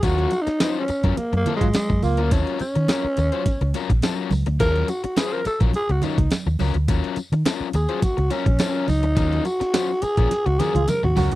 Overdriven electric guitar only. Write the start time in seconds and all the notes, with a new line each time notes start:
0.03 F#3 C#4 F4 A#4
0.47 muted overdriven electric guitar stroke
0.60 F#3 C#4 F4 C5
0.88 muted overdriven electric guitar stroke
1.04 F#3 C#4 F4 A#4
1.33 muted overdriven electric guitar stroke
1.46 F#3 C#4 F4 A#4
1.61 muted overdriven electric guitar stroke
1.75 muted overdriven electric guitar stroke
1.89 muted overdriven electric guitar stroke
2.18 F#3 C#4 F4 A#4
2.31 F3 C4 E4 A4
2.42 F#3 C#4 F4 A#4
2.75 muted overdriven electric guitar stroke
2.89 F#3 C#4 F4 A#4
3.18 muted overdriven electric guitar stroke
3.32 F#3 C#4 F4 C5
3.61 muted overdriven electric guitar stroke
3.75 F#3 C#4 F4 A#4
3.91 muted overdriven electric guitar stroke
4.03 F3 C4 E4 A4
4.14 F#3 C#4 F4 A#4
4.32 muted overdriven electric guitar stroke
4.47 muted overdriven electric guitar stroke
4.60 F3 C4 E4 A4
4.71 F#3 C#4 F4 A#4
5.04 muted overdriven electric guitar stroke
5.17 F#3 C#4 F4 C5
5.45 muted overdriven electric guitar stroke
5.60 F#3 C#4 F4 A#4
5.89 muted overdriven electric guitar stroke
6.03 F#3 C#4 F4 A#4
6.18 muted overdriven electric guitar stroke
6.47 muted overdriven electric guitar stroke
6.60 F#3 C#4 F4 A#4
6.76 muted overdriven electric guitar stroke
6.89 F#3 C#4 F4 A#4
7.33 muted overdriven electric guitar stroke
7.46 F#3 C#4 F4 A#4
7.74 muted overdriven electric guitar stroke
7.89 F#3 C#4 F4 C5
8.17 muted overdriven electric guitar stroke
8.31 F#3 C#4 F4 A#4
8.46 muted overdriven electric guitar stroke
8.59 F3 C4 E4 A4
8.70 F#3 C#4 F4 A#4
8.88 muted overdriven electric guitar stroke
9.03 muted overdriven electric guitar stroke
9.16 F#3 C#4 F4 A#4
9.60 muted overdriven electric guitar stroke
9.74 F#3 C#4 F4 C5
10.02 muted overdriven electric guitar stroke
10.18 F#3 C#4 F4 A#4
10.46 muted overdriven electric guitar stroke
10.60 F#3 C#4 F4 A#4
10.75 muted overdriven electric guitar stroke
11.03 muted overdriven electric guitar stroke
11.16 F#3 C#4 F4 A#4
11.32 muted overdriven electric guitar stroke